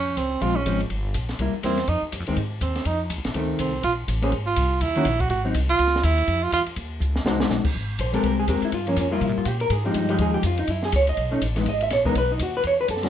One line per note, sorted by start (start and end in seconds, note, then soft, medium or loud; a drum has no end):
0.00 0.16 F2 medium
0.00 0.19 C#4 loud
0.17 0.41 C#2 medium
0.17 0.44 C4 medium
0.17 kick soft
0.17 hi-hat pedal medium
0.17 ride medium
0.41 0.65 A#1 medium
0.41 0.54 F3 medium
0.41 0.55 G#3 medium
0.41 0.55 C4 medium
0.41 0.57 F4 medium
0.41 kick soft
0.41 ride medium
0.56 0.80 C#4 medium
0.66 0.89 G#1 medium
0.66 0.79 F3 medium
0.66 0.79 G#3 medium
0.66 0.79 C4 medium
0.66 kick soft
0.66 hi-hat pedal medium
0.66 ride medium
0.80 ride soft
0.90 1.14 G1 medium
0.90 kick soft
0.90 ride medium
1.14 1.38 A#1 medium
1.14 kick soft
1.14 hi-hat pedal medium
1.14 ride medium
1.29 snare soft
1.29 ride soft
1.39 1.53 C2 medium
1.39 1.53 G3 medium
1.39 1.53 A#3 medium
1.39 1.53 E4 medium
1.39 kick soft
1.39 ride medium
1.53 muted upright bass stroke soft
1.63 1.87 E2 medium
1.63 1.77 G3 medium
1.63 1.77 A#3 medium
1.63 1.90 C4 medium
1.63 1.77 E4 medium
1.63 kick soft
1.63 hi-hat pedal medium
1.63 ride medium
1.77 snare soft
1.77 ride soft
1.88 2.01 F2 medium
1.88 2.03 D#4 medium
1.88 kick soft
1.88 ride medium
2.02 muted upright bass stroke soft
2.12 2.20 F#2 medium
2.12 kick soft
2.12 hi-hat pedal medium
2.12 ride medium
2.20 2.28 F2 medium
2.27 2.36 D#2 medium
2.27 2.36 D#3 medium
2.27 2.36 G#3 medium
2.27 2.36 C4 medium
2.27 ride soft
2.36 2.60 G#2 medium
2.36 kick soft
2.36 ride medium
2.61 2.85 D#2 medium
2.61 2.88 C4 medium
2.61 kick soft
2.61 hi-hat pedal medium
2.61 ride medium
2.75 snare soft
2.75 ride soft
2.85 3.09 F2 medium
2.85 3.00 D#4 medium
2.85 kick soft
2.85 ride medium
3.10 3.18 D#2 medium
3.10 kick soft
3.10 hi-hat pedal medium
3.10 ride medium
3.18 3.25 C2 medium
3.24 3.33 A1 medium
3.24 snare soft
3.24 ride soft
3.34 3.58 C#2 medium
3.34 3.71 D#3 medium
3.34 3.71 A3 medium
3.34 3.71 C4 medium
3.34 kick soft
3.34 ride medium
3.59 3.82 C2 medium
3.59 3.82 C4 medium
3.59 kick soft
3.59 hi-hat pedal medium
3.59 ride medium
3.83 4.07 A#1 medium
3.83 3.93 F4 medium
3.83 kick soft
3.83 ride medium
4.08 4.31 A1 medium
4.08 kick soft
4.08 hi-hat pedal medium
4.08 ride medium
4.22 4.31 A#3 medium
4.22 4.32 C#4 medium
4.22 4.32 G#4 medium
4.22 4.32 C5 medium
4.22 ride soft
4.32 4.56 G#1 medium
4.32 kick soft
4.32 ride medium
4.46 4.83 F4 medium
4.56 4.80 C2 medium
4.56 kick soft
4.56 hi-hat pedal medium
4.56 ride medium
4.81 5.05 D#2 medium
4.81 5.22 E4 medium
4.81 kick soft
4.81 ride medium
4.95 5.05 D#3 medium
4.95 5.05 A#3 medium
4.95 5.05 C#4 medium
4.95 5.05 F#4 medium
4.95 ride soft
5.05 5.29 A#1 medium
5.05 kick soft
5.05 hi-hat pedal medium
5.05 ride medium
5.20 5.30 F#4 medium
5.20 kick medium
5.20 ride soft
5.30 5.54 G#1 medium
5.30 5.44 F#4 medium
5.30 kick soft
5.30 ride medium
5.44 5.53 F#3 medium
5.44 5.54 C4 medium
5.44 5.54 D#4 medium
5.54 5.78 C2 medium
5.54 kick soft
5.54 hi-hat pedal medium
5.54 ride medium
5.69 6.06 F4 loud
5.69 ride soft
5.79 6.03 C#2 medium
5.79 kick soft
5.79 ride medium
5.87 snare soft
5.96 snare soft
6.03 6.27 D#2 medium
6.03 6.45 E4 medium
6.03 kick soft
6.03 hi-hat pedal medium
6.03 ride medium
6.18 ride soft
6.27 6.51 F2 medium
6.27 kick soft
6.27 ride medium
6.43 6.53 F4 medium
6.52 6.66 E2 medium
6.52 6.62 F4 medium
6.52 kick soft
6.52 hi-hat pedal medium
6.52 ride medium
6.66 muted upright bass stroke soft
6.66 ride soft
6.76 7.00 D#2 medium
6.76 kick soft
6.76 ride medium
7.00 7.24 C#2 medium
7.00 hi-hat pedal medium
7.16 snare medium
7.25 7.49 C2 medium
7.25 7.62 G#3 medium
7.25 7.62 D#4 medium
7.25 7.62 F#4 medium
7.25 7.63 C5 medium
7.25 snare medium
7.40 snare medium
7.49 7.63 A#1 medium
7.49 snare medium
7.49 hi-hat pedal medium
7.65 muted upright bass stroke soft
7.65 kick medium
7.65 crash medium
7.74 7.98 G#1 medium
7.74 kick soft
7.99 8.23 A#1 medium
7.99 8.14 C5 medium
7.99 kick soft
7.99 hi-hat pedal soft
7.99 ride medium
8.13 8.46 G#3 medium
8.13 8.46 C4 medium
8.13 8.46 G4 medium
8.13 8.24 A4 medium
8.13 8.24 A#4 medium
8.13 ride soft
8.23 8.47 C2 medium
8.23 8.39 A#4 loud
8.23 kick soft
8.23 ride medium
8.39 8.48 G#4 medium
8.48 8.61 D#2 medium
8.48 8.73 G#3 medium
8.48 8.73 C4 medium
8.48 8.64 G4 medium
8.48 8.73 A#4 medium
8.48 kick soft
8.48 hi-hat pedal medium
8.48 ride medium
8.62 8.73 E4 medium
8.62 muted upright bass stroke soft
8.62 ride soft
8.72 8.96 G2 medium
8.72 8.87 F4 medium
8.72 kick soft
8.72 ride medium
8.87 9.10 F3 medium
8.87 9.10 A#3 medium
8.87 8.99 C#4 medium
8.87 ride soft
8.96 9.20 F2 medium
8.96 9.12 C#4 medium
8.96 kick soft
8.96 hi-hat pedal medium
8.96 ride medium
9.11 9.44 G3 medium
9.11 9.44 A#3 medium
9.11 9.23 E4 medium
9.11 9.21 F4 medium
9.21 9.29 C3 medium
9.21 9.37 E4 medium
9.21 kick soft
9.21 ride medium
9.29 9.37 A#2 medium
9.37 9.45 G2 medium
9.37 9.48 F4 medium
9.45 9.69 A#2 medium
9.45 9.61 G4 medium
9.45 kick soft
9.45 hi-hat pedal medium
9.45 ride medium
9.60 9.72 A#4 loud
9.60 ride soft
9.70 9.94 G#2 medium
9.70 9.85 G#4 medium
9.70 kick soft
9.70 ride medium
9.85 10.08 F3 medium
9.85 10.08 G#3 medium
9.85 9.95 C4 soft
9.85 9.96 D#4 medium
9.85 10.09 G4 medium
9.94 10.18 G2 medium
9.94 10.09 D#4 medium
9.94 kick soft
9.94 hi-hat pedal medium
9.94 ride medium
10.09 10.42 F3 medium
10.09 10.42 G#3 medium
10.09 10.42 D#4 medium
10.09 10.21 G4 medium
10.09 ride soft
10.18 10.43 D#2 medium
10.18 10.34 G#4 medium
10.18 kick soft
10.18 ride medium
10.34 10.44 G4 medium
10.43 10.67 F2 medium
10.43 10.59 F4 medium
10.43 kick soft
10.43 hi-hat pedal medium
10.43 ride medium
10.57 10.68 D#4 medium
10.57 ride soft
10.67 10.92 F#2 medium
10.67 10.83 E4 medium
10.67 kick soft
10.67 ride medium
10.83 10.94 G#4 medium
10.83 snare soft
10.92 11.16 C#2 medium
10.92 11.08 C#5 medium
10.92 kick soft
10.92 hi-hat pedal medium
10.92 ride medium
11.07 11.40 D#5 medium
11.07 ride soft
11.17 11.41 B1 medium
11.17 kick soft
11.17 ride medium
11.31 11.40 A3 medium
11.31 11.41 C#4 medium
11.31 11.41 D#4 medium
11.42 11.65 A1 medium
11.42 kick soft
11.42 hi-hat pedal medium
11.42 ride medium
11.56 11.65 E3 medium
11.56 11.65 G#3 medium
11.56 11.65 B3 medium
11.56 11.66 D#4 medium
11.56 snare soft
11.56 ride soft
11.66 11.90 G#1 medium
11.66 11.82 D#5 medium
11.66 kick soft
11.66 ride medium
11.81 11.91 E5 medium
11.81 ride soft
11.90 12.14 A#1 medium
11.90 12.06 C#5 medium
11.90 kick soft
11.90 snare soft
11.90 hi-hat pedal medium
11.90 ride medium
12.05 12.14 E3 medium
12.05 12.14 G#3 medium
12.05 12.14 B3 medium
12.05 12.14 D#4 medium
12.05 12.15 A#4 medium
12.05 kick medium
12.15 12.39 B1 medium
12.15 12.31 B4 medium
12.15 kick soft
12.15 ride medium
12.32 12.40 D#4 medium
12.39 12.63 D#2 medium
12.39 12.55 F#4 medium
12.39 kick soft
12.39 hi-hat pedal medium
12.39 ride medium
12.57 12.65 B4 medium
12.63 12.88 E2 medium
12.63 12.80 C#5 medium
12.63 kick soft
12.63 ride medium
12.81 12.89 B4 medium
12.88 13.09 F#2 medium
12.88 13.05 A4 medium
12.88 kick soft
12.88 hi-hat pedal medium
12.88 ride medium
12.97 snare soft
13.03 13.09 G3 medium
13.03 13.09 C#4 medium
13.03 13.09 F#4 medium
13.03 13.09 G#4 medium
13.03 snare soft
13.03 ride soft